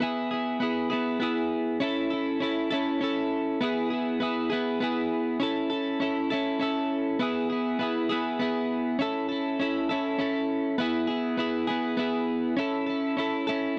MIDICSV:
0, 0, Header, 1, 2, 480
1, 0, Start_track
1, 0, Key_signature, 3, "major"
1, 0, Tempo, 598205
1, 11, Time_signature, 6, 3, 24, 8
1, 11063, End_track
2, 0, Start_track
2, 0, Title_t, "Clean electric guitar"
2, 0, Program_c, 0, 27
2, 2, Note_on_c, 0, 59, 78
2, 15, Note_on_c, 0, 64, 84
2, 25, Note_on_c, 0, 68, 97
2, 238, Note_off_c, 0, 68, 0
2, 248, Note_on_c, 0, 68, 68
2, 258, Note_off_c, 0, 64, 0
2, 268, Note_on_c, 0, 64, 56
2, 472, Note_off_c, 0, 59, 0
2, 482, Note_on_c, 0, 59, 67
2, 488, Note_off_c, 0, 64, 0
2, 495, Note_off_c, 0, 68, 0
2, 498, Note_on_c, 0, 64, 65
2, 505, Note_on_c, 0, 68, 67
2, 712, Note_off_c, 0, 68, 0
2, 722, Note_on_c, 0, 68, 78
2, 724, Note_off_c, 0, 64, 0
2, 734, Note_on_c, 0, 64, 64
2, 737, Note_off_c, 0, 59, 0
2, 746, Note_on_c, 0, 59, 64
2, 952, Note_off_c, 0, 59, 0
2, 961, Note_on_c, 0, 59, 67
2, 966, Note_off_c, 0, 64, 0
2, 975, Note_on_c, 0, 64, 62
2, 977, Note_off_c, 0, 68, 0
2, 987, Note_on_c, 0, 68, 69
2, 1433, Note_off_c, 0, 59, 0
2, 1440, Note_off_c, 0, 64, 0
2, 1446, Note_off_c, 0, 68, 0
2, 1446, Note_on_c, 0, 61, 82
2, 1458, Note_on_c, 0, 64, 92
2, 1470, Note_on_c, 0, 69, 87
2, 1678, Note_off_c, 0, 69, 0
2, 1688, Note_on_c, 0, 69, 68
2, 1709, Note_off_c, 0, 64, 0
2, 1712, Note_on_c, 0, 64, 55
2, 1919, Note_off_c, 0, 61, 0
2, 1928, Note_on_c, 0, 61, 57
2, 1938, Note_off_c, 0, 64, 0
2, 1941, Note_on_c, 0, 64, 67
2, 1943, Note_off_c, 0, 69, 0
2, 1952, Note_on_c, 0, 69, 69
2, 2161, Note_off_c, 0, 69, 0
2, 2171, Note_on_c, 0, 69, 77
2, 2181, Note_off_c, 0, 64, 0
2, 2183, Note_off_c, 0, 61, 0
2, 2184, Note_on_c, 0, 64, 81
2, 2193, Note_on_c, 0, 61, 71
2, 2404, Note_off_c, 0, 61, 0
2, 2413, Note_on_c, 0, 61, 74
2, 2422, Note_off_c, 0, 64, 0
2, 2425, Note_on_c, 0, 64, 68
2, 2427, Note_off_c, 0, 69, 0
2, 2436, Note_on_c, 0, 69, 87
2, 2880, Note_off_c, 0, 61, 0
2, 2892, Note_off_c, 0, 69, 0
2, 2894, Note_on_c, 0, 59, 88
2, 2902, Note_off_c, 0, 64, 0
2, 2905, Note_on_c, 0, 64, 86
2, 2916, Note_on_c, 0, 68, 99
2, 3122, Note_off_c, 0, 68, 0
2, 3132, Note_on_c, 0, 68, 62
2, 3153, Note_off_c, 0, 64, 0
2, 3156, Note_on_c, 0, 64, 57
2, 3361, Note_off_c, 0, 59, 0
2, 3371, Note_on_c, 0, 59, 64
2, 3381, Note_off_c, 0, 64, 0
2, 3384, Note_off_c, 0, 68, 0
2, 3385, Note_on_c, 0, 64, 72
2, 3394, Note_on_c, 0, 68, 72
2, 3599, Note_off_c, 0, 68, 0
2, 3609, Note_on_c, 0, 68, 84
2, 3621, Note_off_c, 0, 64, 0
2, 3624, Note_off_c, 0, 59, 0
2, 3624, Note_on_c, 0, 64, 71
2, 3634, Note_on_c, 0, 59, 72
2, 3845, Note_off_c, 0, 59, 0
2, 3855, Note_on_c, 0, 59, 75
2, 3866, Note_off_c, 0, 64, 0
2, 3869, Note_on_c, 0, 64, 75
2, 3871, Note_off_c, 0, 68, 0
2, 3880, Note_on_c, 0, 68, 76
2, 4321, Note_off_c, 0, 59, 0
2, 4331, Note_on_c, 0, 61, 84
2, 4334, Note_off_c, 0, 68, 0
2, 4341, Note_off_c, 0, 64, 0
2, 4345, Note_on_c, 0, 64, 86
2, 4357, Note_on_c, 0, 69, 97
2, 4562, Note_off_c, 0, 69, 0
2, 4572, Note_on_c, 0, 69, 77
2, 4591, Note_off_c, 0, 64, 0
2, 4594, Note_on_c, 0, 64, 59
2, 4805, Note_off_c, 0, 61, 0
2, 4815, Note_on_c, 0, 61, 61
2, 4825, Note_off_c, 0, 64, 0
2, 4828, Note_off_c, 0, 69, 0
2, 4828, Note_on_c, 0, 64, 70
2, 4838, Note_on_c, 0, 69, 64
2, 5048, Note_off_c, 0, 69, 0
2, 5058, Note_on_c, 0, 69, 82
2, 5067, Note_off_c, 0, 64, 0
2, 5071, Note_on_c, 0, 64, 86
2, 5072, Note_off_c, 0, 61, 0
2, 5082, Note_on_c, 0, 61, 72
2, 5283, Note_off_c, 0, 61, 0
2, 5293, Note_on_c, 0, 61, 70
2, 5300, Note_off_c, 0, 64, 0
2, 5303, Note_on_c, 0, 64, 77
2, 5306, Note_off_c, 0, 69, 0
2, 5316, Note_on_c, 0, 69, 88
2, 5760, Note_off_c, 0, 61, 0
2, 5772, Note_off_c, 0, 69, 0
2, 5772, Note_on_c, 0, 59, 92
2, 5782, Note_off_c, 0, 64, 0
2, 5785, Note_on_c, 0, 64, 86
2, 5797, Note_on_c, 0, 68, 97
2, 6006, Note_off_c, 0, 68, 0
2, 6016, Note_on_c, 0, 68, 68
2, 6034, Note_off_c, 0, 64, 0
2, 6037, Note_on_c, 0, 64, 53
2, 6242, Note_off_c, 0, 59, 0
2, 6252, Note_on_c, 0, 59, 62
2, 6262, Note_off_c, 0, 64, 0
2, 6266, Note_on_c, 0, 64, 65
2, 6269, Note_off_c, 0, 68, 0
2, 6279, Note_on_c, 0, 68, 71
2, 6484, Note_off_c, 0, 68, 0
2, 6494, Note_on_c, 0, 68, 84
2, 6504, Note_off_c, 0, 64, 0
2, 6506, Note_off_c, 0, 59, 0
2, 6507, Note_on_c, 0, 64, 68
2, 6516, Note_on_c, 0, 59, 69
2, 6726, Note_off_c, 0, 59, 0
2, 6736, Note_on_c, 0, 59, 72
2, 6748, Note_off_c, 0, 64, 0
2, 6750, Note_off_c, 0, 68, 0
2, 6751, Note_on_c, 0, 64, 80
2, 6760, Note_on_c, 0, 68, 75
2, 7202, Note_off_c, 0, 59, 0
2, 7213, Note_on_c, 0, 61, 72
2, 7214, Note_off_c, 0, 68, 0
2, 7224, Note_off_c, 0, 64, 0
2, 7227, Note_on_c, 0, 64, 91
2, 7238, Note_on_c, 0, 69, 99
2, 7442, Note_off_c, 0, 69, 0
2, 7452, Note_on_c, 0, 69, 61
2, 7474, Note_off_c, 0, 64, 0
2, 7477, Note_on_c, 0, 64, 61
2, 7690, Note_off_c, 0, 61, 0
2, 7700, Note_on_c, 0, 61, 63
2, 7710, Note_off_c, 0, 64, 0
2, 7712, Note_off_c, 0, 69, 0
2, 7713, Note_on_c, 0, 64, 68
2, 7722, Note_on_c, 0, 69, 67
2, 7928, Note_off_c, 0, 69, 0
2, 7938, Note_on_c, 0, 69, 72
2, 7948, Note_off_c, 0, 64, 0
2, 7951, Note_off_c, 0, 61, 0
2, 7951, Note_on_c, 0, 64, 75
2, 7960, Note_on_c, 0, 61, 68
2, 8163, Note_off_c, 0, 61, 0
2, 8172, Note_on_c, 0, 61, 75
2, 8179, Note_off_c, 0, 64, 0
2, 8182, Note_on_c, 0, 64, 73
2, 8183, Note_off_c, 0, 69, 0
2, 8193, Note_on_c, 0, 69, 76
2, 8639, Note_off_c, 0, 61, 0
2, 8649, Note_off_c, 0, 69, 0
2, 8651, Note_on_c, 0, 59, 90
2, 8663, Note_off_c, 0, 64, 0
2, 8666, Note_on_c, 0, 64, 92
2, 8676, Note_on_c, 0, 68, 80
2, 8876, Note_off_c, 0, 68, 0
2, 8886, Note_on_c, 0, 68, 71
2, 8904, Note_off_c, 0, 64, 0
2, 8908, Note_on_c, 0, 64, 59
2, 9117, Note_off_c, 0, 59, 0
2, 9127, Note_on_c, 0, 59, 59
2, 9136, Note_off_c, 0, 64, 0
2, 9139, Note_off_c, 0, 68, 0
2, 9139, Note_on_c, 0, 64, 77
2, 9149, Note_on_c, 0, 68, 75
2, 9357, Note_off_c, 0, 68, 0
2, 9367, Note_on_c, 0, 68, 92
2, 9375, Note_off_c, 0, 64, 0
2, 9378, Note_on_c, 0, 64, 68
2, 9381, Note_off_c, 0, 59, 0
2, 9390, Note_on_c, 0, 59, 72
2, 9596, Note_off_c, 0, 59, 0
2, 9606, Note_on_c, 0, 59, 78
2, 9617, Note_off_c, 0, 64, 0
2, 9619, Note_off_c, 0, 68, 0
2, 9620, Note_on_c, 0, 64, 77
2, 9629, Note_on_c, 0, 68, 83
2, 10074, Note_off_c, 0, 59, 0
2, 10084, Note_on_c, 0, 61, 89
2, 10086, Note_off_c, 0, 68, 0
2, 10095, Note_off_c, 0, 64, 0
2, 10099, Note_on_c, 0, 64, 97
2, 10106, Note_on_c, 0, 69, 98
2, 10313, Note_off_c, 0, 69, 0
2, 10323, Note_on_c, 0, 69, 67
2, 10345, Note_off_c, 0, 64, 0
2, 10348, Note_on_c, 0, 64, 58
2, 10557, Note_off_c, 0, 61, 0
2, 10566, Note_on_c, 0, 61, 57
2, 10576, Note_off_c, 0, 64, 0
2, 10579, Note_on_c, 0, 64, 71
2, 10580, Note_off_c, 0, 69, 0
2, 10590, Note_on_c, 0, 69, 67
2, 10799, Note_off_c, 0, 69, 0
2, 10809, Note_on_c, 0, 69, 78
2, 10821, Note_off_c, 0, 61, 0
2, 10821, Note_off_c, 0, 64, 0
2, 10824, Note_on_c, 0, 64, 86
2, 10831, Note_on_c, 0, 61, 67
2, 11042, Note_off_c, 0, 61, 0
2, 11062, Note_off_c, 0, 64, 0
2, 11063, Note_off_c, 0, 69, 0
2, 11063, End_track
0, 0, End_of_file